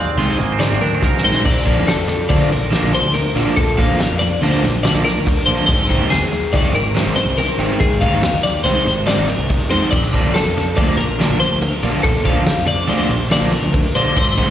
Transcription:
Already playing: D#2 G#2 G#3 F4 G#4 D5
0.00 C4
0.16 C2 D#3 G#3 C4 D#4 F4 C5, closed hi-hat
0.30 G#4
0.39 G#1 G#2 A#3, muted overdriven electric guitar stroke, closed hi-hat
0.52 C4
0.59 D#3 G#3 C4 D#4 D5, snare, closed hi-hat
0.71 G#1
0.81 D2 D4 A#4, muted overdriven electric guitar stroke, closed hi-hat
0.94 F4
1.02 C2 G#2 A#4, muted overdriven electric guitar stroke, kick, snare
1.17 snare
1.23 A#1 D#3 G#3 C4 D#4 C5
1.32 snare
1.45 A#1 D5, muted overdriven electric guitar stroke, kick, crash
1.65 D3 F3 A#3 D4, kick, ride
1.75 F2
1.86 A4, muted overdriven electric guitar stroke, snare, ride
1.96 F2
2.08 muted overdriven electric guitar stroke, snare, ride
2.29 D2 D3 F3 A#3 D4 D5, kick, ride
2.49 A#1 A#4, muted overdriven electric guitar stroke, ride
2.71 D3 F3 A#3 D4, snare, ride
2.82 A#1
2.93 C5, muted overdriven electric guitar stroke, snare, ride
3.02 D2
3.14 A#4, muted overdriven electric guitar stroke, ride
3.35 A#1 D3 F3 A#3 D4, snare, ride
3.56 A#1 A4, muted overdriven electric guitar stroke, kick, ride
3.77 D3 F3 A#3 D4 F5, kick, snare, ride
3.88 F2
4.00 muted overdriven electric guitar stroke, snare, ride
4.09 F2
4.19 D5, muted overdriven electric guitar stroke, ride
4.41 D2 D3 F3 A#3 D4 C5, snare, ride
4.62 A#1, muted overdriven electric guitar stroke, snare, ride
4.83 D3 F3 A#3 D4 D5, snare, ride
4.94 A#1
5.04 A#4, muted overdriven electric guitar stroke, snare, ride
5.14 D2
5.27 muted overdriven electric guitar stroke, kick, ride
5.46 A#1 D3 F3 A#3 D4 C5, ride
5.66 G#1 C5, muted overdriven electric guitar stroke, kick, crash
5.89 D#3 G#3 C4 D#4, kick, ride
5.99 D#2
6.10 G#4, muted overdriven electric guitar stroke, snare, ride
6.21 D#2
6.32 muted overdriven electric guitar stroke, ride
6.53 C2 D#3 G#3 C4 D#4 D5, kick, snare, ride
6.73 G#1 A#4, muted overdriven electric guitar stroke, ride
6.95 D#3 G#3 C4 D#4, snare, ride
7.06 G#1
7.16 C5, muted overdriven electric guitar stroke, ride
7.26 C2
7.37 A#4, muted overdriven electric guitar stroke, snare, ride
7.58 G#1 D#3 G#3 C4 D#4, ride
7.80 G#1 G#4, muted overdriven electric guitar stroke, kick, ride
8.01 D#3 G#3 C4 D#4 F5, kick, ride
8.11 D#2
8.22 muted overdriven electric guitar stroke, snare, ride
8.33 D#2
8.43 D5, muted overdriven electric guitar stroke, snare, ride
8.64 C2 D#3 G#3 C4 D#4 C5, snare, ride
8.86 G#1, muted overdriven electric guitar stroke, snare, ride
9.06 D#3 G#3 C4 D#4 D5, snare, ride
9.18 G#1
9.28 A#4, muted overdriven electric guitar stroke, ride
9.38 C2
9.49 muted overdriven electric guitar stroke, kick, ride
9.70 F2 D#3 G#3 C4 D#4 C5, ride
9.91 A#1 D5, muted overdriven electric guitar stroke, kick, crash
10.13 D3 F3 A#3 D4, kick, ride
10.23 F2
10.34 A4, muted overdriven electric guitar stroke, snare, ride
10.46 F2
10.57 muted overdriven electric guitar stroke, snare, ride
10.77 D2 D3 F3 A#3 D4 D5, kick, ride
10.97 A#1 A#4, muted overdriven electric guitar stroke, ride
11.20 D3 F3 A#3 D4, snare, ride
11.29 A#1
11.40 C5, muted overdriven electric guitar stroke, ride
11.51 D2
11.62 A#4, muted overdriven electric guitar stroke, ride
11.82 A#1 D3 F3 A#3 D4, ride
12.03 A#1 A4, muted overdriven electric guitar stroke, kick, ride
12.25 D3 F3 A#3 D4 F5, kick, ride
12.35 F2
12.46 muted overdriven electric guitar stroke, snare, ride
12.57 F2
12.66 D5, muted overdriven electric guitar stroke, ride
12.88 D2 D3 F3 A#3 D4 C5, ride
13.09 A#1, muted overdriven electric guitar stroke, ride
13.30 D3 F3 A#3 D4 D5, snare, ride
13.41 A#1
13.52 A#4, muted overdriven electric guitar stroke, snare, ride
13.62 D2
13.73 muted overdriven electric guitar stroke, kick, ride
13.95 A#1 D3 F3 A#3 D4 C5, ride
14.16 G#1 C5, muted overdriven electric guitar stroke, kick, crash
14.37 D#3 G#3 C4 D#4, kick, ride
14.47 D#2

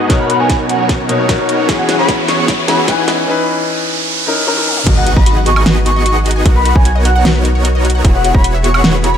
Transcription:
Already playing: G#3 D#4 F#4 B4 A#5, riser
0.08 B2 F#3 B3 C#4 D#4 F#4 A#4 C#5 D#5 F#5, kick, snare, closed hi-hat
0.20 B5
0.30 B5, closed hi-hat
0.40 B3 D#4 F#4 A#4 C#5 G#5
0.49 G#5, kick, snare, closed hi-hat
0.69 F#5, closed hi-hat
0.80 F#5
0.89 kick, snare, closed hi-hat
1.08 B2 A#3 D#4 C#5, closed hi-hat
1.28 B2 D#4 A#4 C#5, kick, snare, closed hi-hat
1.49 closed hi-hat
1.67 E2 E3 B3 C#4 E4 F#4 G#4 C#5 F#5, kick, snare, closed hi-hat
1.79 F#5
1.89 F#5, snare, closed hi-hat
1.99 B3 E4 F#4 G#4 C#5 B5
2.08 kick, snare, closed hi-hat
2.28 C#6, snare, closed hi-hat
2.39 C#6
2.48 kick, snare, closed hi-hat
2.67 E3 C#4 F#4 G#4 B5, snare, closed hi-hat
2.87 E3 C#4 D#4 B4 G#5, kick, snare, closed hi-hat
3.08 snare, closed hi-hat
3.26 E3 C#4 D#4 B4
4.26 E3 C#4 D#4 A#4
4.46 E3 C#4 D#4 A#4, high tom
4.57 high tom
4.67 mid tom
4.77 mid tom
4.87 G#1 B3 D#4 F#4 G#4 D#5, kick, closed hi-hat, crash, impact
4.97 B4 F#5
5.06 F#4 F#5, closed hi-hat
5.17 G#1 B3 D#4 F#4 G#4 D#5 B5, kick
5.26 F#4, closed hi-hat
5.37 F#5
5.46 F#4 C#6, closed hi-hat
5.56 G#5 C#6, high woodblock
5.66 F#4, snare, closed hi-hat
5.76 B4
5.86 F#4 C#6, closed hi-hat
5.96 D#5
6.06 F#4, closed hi-hat
6.16 F#5
6.26 F#4, closed hi-hat
6.31 closed hi-hat
6.36 G#5
6.46 B1 B3 D#4 F#4 A#4 F#5, kick, closed hi-hat
6.56 B4 B5
6.65 F#4 B5, closed hi-hat
6.76 B1 B3 D#4 F#4 A#4 C#5 G#5, kick
6.85 F#4 G#5, closed hi-hat
6.96 D#5
7.05 F#4 F#5, closed hi-hat
7.15 F#5
7.25 F#4, snare, closed hi-hat
7.35 B4
7.45 F#4, closed hi-hat
7.55 C#5
7.65 F#4, closed hi-hat
7.75 D#5
7.85 F#4, closed hi-hat
7.90 closed hi-hat
7.95 F#5
8.05 E1 B3 E4 F#4 G#4 C#5, kick, closed hi-hat
8.15 B4 F#5
8.24 F#4 F#5, closed hi-hat
8.34 E1 B3 E4 F#4 G#4 C#5 B5, kick
8.44 F#4, closed hi-hat
8.55 E5
8.64 F#4 C#6, closed hi-hat
8.74 F#5 C#6, high woodblock
8.84 F#4, snare, closed hi-hat
8.94 B4
9.04 F#4 B5, closed hi-hat
9.14 C#5

